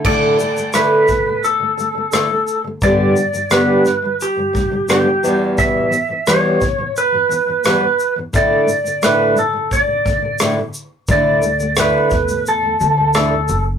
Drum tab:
CC |x---------------|----------------|----------------|----------------|
SH |--xxx-x-x-x-x-x-|x-xxx-x-x-x-x-x-|x-x-x-x-x-x-x-x-|x-xxx-x-x-x-x-x-|
SD |----r-------r---|----r-r-----r---|----r-------r---|----r-------r---|
BD |o-----o---------|o---------o-----|o-----o---------|o-------o-o-----|

CC |----------------|
SH |x-xxx-xxx-x-x-x-|
SD |----r-------r---|
BD |o-----o---------|